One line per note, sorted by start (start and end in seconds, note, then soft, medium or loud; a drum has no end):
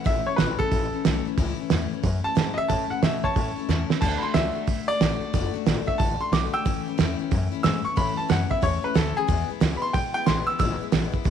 0.04 0.26 A1 medium
0.04 0.26 A2 medium
0.04 0.26 E3 medium
0.04 0.26 A3 medium
0.04 0.27 C#4 medium
0.04 0.25 E4 medium
0.04 0.26 E5 loud
0.04 kick loud
0.04 open hi-hat soft
0.26 0.39 A3 soft
0.26 0.39 C#4 soft
0.26 0.38 E4 soft
0.26 0.38 C#5 medium
0.26 muted upright bass stroke medium
0.36 0.59 G#1 loud
0.36 0.60 A2 medium
0.36 0.60 E3 medium
0.36 0.60 A3 medium
0.36 0.60 C#4 medium
0.36 0.58 B4 medium
0.36 snare loud
0.36 open hi-hat medium
0.41 0.58 E4 medium
0.59 0.72 C#4 medium
0.59 0.71 E4 soft
0.59 1.23 A4 loud
0.59 kick medium
0.63 0.72 A3 soft
0.71 0.92 A1 medium
0.71 0.93 E3 medium
0.71 0.93 A3 medium
0.71 0.93 C#4 medium
0.71 0.92 E4 medium
0.71 kick loud
0.71 open hi-hat medium
0.93 1.05 A3 soft
0.93 1.05 C#4 medium
0.93 1.05 E4 medium
0.93 muted upright bass stroke medium
1.05 1.25 B1 medium
1.05 1.26 A2 loud
1.05 1.26 E3 loud
1.05 1.26 A3 loud
1.05 1.26 C#4 loud
1.05 1.24 E4 loud
1.05 snare loud
1.05 open hi-hat medium
1.25 1.37 A3 medium
1.25 1.38 C#4 medium
1.25 1.37 E4 medium
1.25 muted upright bass stroke medium
1.38 1.58 C#2 medium
1.38 1.59 A2 loud
1.38 1.59 E3 loud
1.38 1.59 A3 medium
1.38 1.59 C#4 loud
1.38 1.57 E4 loud
1.38 kick loud
1.38 open hi-hat medium
1.59 1.70 A3 medium
1.59 1.71 C#4 medium
1.59 1.71 E4 medium
1.59 muted upright bass stroke medium
1.70 1.91 E2 loud
1.70 1.91 A2 medium
1.70 1.92 E3 loud
1.70 1.92 A3 medium
1.70 1.92 C#4 loud
1.70 1.90 E4 medium
1.70 snare loud
1.70 open hi-hat medium
1.91 2.03 A3 medium
1.91 2.04 C#4 medium
1.91 2.03 E4 medium
1.91 muted upright bass stroke medium
2.03 2.24 F#2 medium
2.03 2.24 E3 medium
2.03 2.25 A3 medium
2.03 2.25 C#4 medium
2.03 2.23 E4 medium
2.03 kick loud
2.03 open hi-hat medium
2.24 2.36 A3 soft
2.24 2.36 C#4 medium
2.24 2.36 E4 medium
2.24 2.57 A5 loud
2.24 muted upright bass stroke medium
2.35 2.57 G#2 medium
2.35 2.57 A2 medium
2.35 2.57 E3 loud
2.35 2.58 A3 loud
2.35 2.58 C#4 loud
2.35 2.56 E4 loud
2.35 snare loud
2.35 open hi-hat medium
2.54 2.69 E4 soft
2.54 2.56 D#5 medium
2.54 2.69 E5 loud
2.54 muted upright bass stroke medium
2.59 2.69 A3 soft
2.59 2.69 C#4 soft
2.69 2.91 A2 medium
2.69 2.90 A2 medium
2.69 2.91 E3 medium
2.69 2.91 A3 medium
2.69 2.91 C#4 medium
2.69 2.90 E4 medium
2.69 2.89 A5 loud
2.69 kick loud
2.69 open hi-hat medium
2.90 3.03 A3 soft
2.90 3.03 C#4 medium
2.90 3.03 E4 medium
2.90 3.02 F#5 medium
2.90 muted upright bass stroke medium
3.02 3.24 A2 medium
3.02 3.23 B2 loud
3.02 3.24 E3 medium
3.02 3.24 A3 medium
3.02 3.24 C#4 medium
3.02 3.22 E4 medium
3.02 3.23 E5 medium
3.02 snare loud
3.02 open hi-hat soft
3.23 3.35 A3 soft
3.23 3.36 C#4 soft
3.23 3.35 E4 medium
3.23 3.86 C#5 medium
3.23 3.88 A5 loud
3.23 muted upright bass stroke medium
3.23 kick medium
3.35 3.56 A2 medium
3.35 3.56 E3 medium
3.35 3.57 A3 medium
3.35 3.57 C#4 medium
3.35 3.55 E4 medium
3.35 kick loud
3.35 open hi-hat medium
3.56 3.69 A3 soft
3.56 3.69 C#4 soft
3.56 3.68 E4 medium
3.56 muted upright bass stroke medium
3.69 3.89 E2 medium
3.69 3.90 A2 medium
3.69 3.90 E3 loud
3.69 3.90 A3 medium
3.69 3.90 C#4 loud
3.69 3.88 E4 loud
3.69 snare medium
3.90 4.01 A3 soft
3.90 4.02 C#4 medium
3.90 4.02 E4 medium
3.90 snare medium
4.01 4.22 D2 medium
4.01 4.23 D3 medium
4.01 4.23 A3 medium
4.01 4.22 D4 medium
4.01 4.20 F#4 medium
4.01 4.22 A5 loud
4.01 kick loud
4.01 open hi-hat medium
4.01 crash medium
4.18 4.34 F#4 medium
4.18 4.20 B5 medium
4.23 4.33 A3 medium
4.23 4.34 D4 medium
4.23 4.34 C6 medium
4.34 4.55 C#2 loud
4.34 4.55 D3 medium
4.34 4.56 A3 medium
4.34 4.55 D4 medium
4.34 4.54 F#4 medium
4.34 4.87 E5 loud
4.34 snare loud
4.34 open hi-hat medium
4.55 4.68 A3 soft
4.55 4.68 D4 medium
4.55 4.67 F#4 medium
4.55 muted upright bass stroke medium
4.67 4.87 B1 medium
4.67 4.89 A3 medium
4.67 4.89 D4 medium
4.67 4.87 F#4 medium
4.67 kick loud
4.67 open hi-hat medium
4.88 5.01 A3 soft
4.88 5.02 D4 medium
4.88 5.01 F#4 medium
4.88 5.52 D5 loud
4.88 muted upright bass stroke soft
5.00 5.21 A1 loud
5.00 5.22 D3 medium
5.00 5.22 A3 medium
5.00 5.21 D4 medium
5.00 5.19 F#4 loud
5.00 snare loud
5.00 open hi-hat medium
5.21 5.32 A3 soft
5.21 5.34 D4 soft
5.21 5.33 F#4 medium
5.21 muted upright bass stroke medium
5.33 5.53 F#1 medium
5.33 5.54 D3 medium
5.33 5.55 A3 medium
5.33 5.54 D4 medium
5.33 5.52 F#4 loud
5.33 kick loud
5.33 open hi-hat medium
5.54 5.66 A3 medium
5.54 5.66 D4 medium
5.54 5.66 F#4 medium
5.54 muted upright bass stroke medium
5.66 5.87 G#1 loud
5.66 5.87 D3 medium
5.66 5.88 A3 loud
5.66 5.87 D4 medium
5.66 5.85 F#4 loud
5.66 snare loud
5.66 open hi-hat medium
5.86 5.99 A3 medium
5.86 6.00 D4 medium
5.86 5.99 F#4 medium
5.86 5.99 E5 medium
5.86 kick medium
5.98 6.20 A1 medium
5.98 6.20 D3 medium
5.98 6.21 A3 medium
5.98 6.20 D4 medium
5.98 6.19 F#4 medium
5.98 6.19 A5 medium
5.98 kick loud
5.98 open hi-hat medium
6.20 6.32 A3 soft
6.20 6.33 D4 medium
6.20 6.32 F#4 medium
6.20 6.32 C6 medium
6.20 muted upright bass stroke medium
6.32 6.52 B1 loud
6.32 6.53 D3 medium
6.32 6.54 A3 loud
6.32 6.53 D4 medium
6.32 6.52 F#4 loud
6.32 6.53 D6 loud
6.32 snare loud
6.32 open hi-hat medium
6.53 6.65 A3 medium
6.53 6.66 D4 medium
6.53 6.65 F#4 medium
6.53 7.48 G5 loud
6.53 7.49 E6 loud
6.65 6.85 C#2 medium
6.65 6.86 A2 medium
6.65 6.87 E3 medium
6.65 6.87 A3 medium
6.65 6.86 C#4 medium
6.65 6.85 E4 medium
6.65 kick loud
6.65 open hi-hat medium
6.86 6.98 A3 soft
6.86 6.98 C#4 medium
6.86 6.98 E4 medium
6.98 7.19 E2 loud
6.98 7.19 A2 medium
6.98 7.19 E3 loud
6.98 7.19 A3 medium
6.98 7.20 C#4 loud
6.98 7.18 E4 loud
6.98 snare loud
6.98 open hi-hat medium
7.19 7.31 A3 soft
7.19 7.32 C#4 medium
7.19 7.31 E4 medium
7.19 muted upright bass stroke medium
7.31 7.52 F#2 medium
7.31 7.52 E3 medium
7.31 7.53 A3 medium
7.31 7.52 C#4 medium
7.31 7.50 E4 medium
7.31 kick loud
7.31 open hi-hat medium
7.52 7.64 A3 medium
7.52 7.65 C#4 medium
7.52 7.64 E4 medium
7.63 7.85 G#2 loud
7.63 7.85 A2 medium
7.63 7.85 E3 loud
7.63 7.85 A3 medium
7.63 7.84 C#4 loud
7.63 7.83 E4 loud
7.63 7.84 E6 loud
7.63 snare loud
7.63 open hi-hat medium
7.84 7.96 A3 soft
7.84 7.96 C#4 soft
7.84 7.96 E4 medium
7.84 7.96 C#6 medium
7.84 muted upright bass stroke medium
7.96 8.17 A2 medium
7.96 8.18 A2 medium
7.96 8.18 E3 medium
7.96 8.18 A3 medium
7.96 8.17 C#4 medium
7.96 8.15 E4 medium
7.96 8.17 B5 loud
7.96 kick loud
7.96 open hi-hat medium
8.16 8.29 A3 soft
8.16 8.29 C#4 medium
8.16 8.29 E4 medium
8.16 8.29 A5 medium
8.16 muted upright bass stroke medium
8.29 8.50 F#2 loud
8.29 8.50 A2 medium
8.29 8.51 E3 medium
8.29 8.51 A3 medium
8.29 8.49 C#4 medium
8.29 8.48 E4 medium
8.29 8.50 F#5 medium
8.29 snare loud
8.29 open hi-hat medium
8.49 8.60 A3 soft
8.49 8.62 C#4 medium
8.49 8.62 E4 medium
8.49 8.62 E5 loud
8.49 kick medium
8.61 8.83 E2 medium
8.61 8.83 E3 medium
8.61 8.83 A3 medium
8.61 8.83 C#4 medium
8.61 8.81 E4 medium
8.61 8.83 C#5 loud
8.61 kick loud
8.61 open hi-hat medium
8.82 8.95 A3 soft
8.82 8.95 C#4 soft
8.82 8.95 E4 soft
8.82 8.96 B4 medium
8.82 muted upright bass stroke medium
8.94 9.16 D2 loud
8.94 9.16 A2 medium
8.94 9.17 E3 loud
8.94 9.17 A3 loud
8.94 9.16 C#4 loud
8.94 9.14 E4 loud
8.94 9.16 A4 medium
8.94 snare loud
8.94 open hi-hat medium
9.15 9.28 A3 soft
9.15 9.29 C#4 medium
9.15 9.28 E4 medium
9.15 9.49 G#4 loud
9.28 9.49 E2 medium
9.28 9.49 B2 medium
9.28 9.50 E3 medium
9.28 9.49 G#3 medium
9.28 9.48 B3 medium
9.28 9.47 E4 medium
9.28 kick loud
9.28 open hi-hat medium
9.48 9.60 E3 soft
9.48 9.61 G#3 soft
9.48 9.61 B3 soft
9.48 9.61 E4 medium
9.48 muted upright bass stroke medium
9.60 9.82 C#2 loud
9.60 9.82 E2 medium
9.60 9.82 B2 medium
9.60 9.82 E3 loud
9.60 9.83 G#3 medium
9.60 9.82 B3 loud
9.60 9.81 E4 loud
9.60 snare loud
9.60 open hi-hat medium
9.77 9.79 B5 medium
9.82 9.93 E3 soft
9.82 9.94 G#3 soft
9.82 9.95 B3 soft
9.82 9.94 E4 medium
9.82 9.94 C6 loud
9.93 10.14 B1 medium
9.93 10.16 E3 soft
9.93 10.16 G#3 medium
9.93 10.15 B3 medium
9.93 10.13 G5 medium
9.93 kick loud
9.93 open hi-hat medium
9.98 10.14 E4 medium
10.14 10.27 G#3 medium
10.14 10.27 B3 medium
10.14 10.27 E4 medium
10.14 10.26 G5 loud
10.14 muted upright bass stroke soft
10.18 10.27 E3 soft
10.26 10.48 A1 loud
10.26 10.48 E2 medium
10.26 10.48 B2 medium
10.26 10.49 E3 loud
10.26 10.49 G#3 loud
10.26 10.48 B3 medium
10.26 10.46 E4 loud
10.26 10.47 C6 loud
10.26 snare loud
10.26 open hi-hat medium
10.47 10.58 E3 soft
10.47 10.59 G#3 medium
10.47 10.60 B3 soft
10.47 10.60 E4 medium
10.47 10.58 E6 loud
10.47 muted upright bass stroke medium
10.59 10.80 G#1 medium
10.59 10.80 E2 medium
10.59 10.81 B2 medium
10.59 10.81 E3 medium
10.59 10.81 G#3 medium
10.59 10.80 B3 loud
10.59 10.79 E4 medium
10.59 11.30 E6 loud
10.59 kick loud
10.59 open hi-hat medium
10.80 10.91 E3 soft
10.80 10.92 G#3 medium
10.80 10.92 B3 medium
10.80 10.92 E4 medium
10.80 muted upright bass stroke medium
10.92 11.13 A1 loud
10.92 11.13 E2 medium
10.92 11.13 B2 medium
10.92 11.14 E3 medium
10.92 11.13 G#3 medium
10.92 11.12 B3 medium
10.92 11.11 E4 medium
10.92 snare loud
10.92 open hi-hat medium
11.12 11.23 E3 soft
11.12 11.25 G#3 medium
11.12 11.25 B3 medium
11.12 11.25 E4 medium
11.12 muted upright bass stroke medium
11.12 kick medium
11.24 11.30 B1 medium
11.24 11.30 E3 medium
11.24 11.30 G#3 medium
11.24 11.30 B3 medium
11.24 kick loud
11.24 open hi-hat medium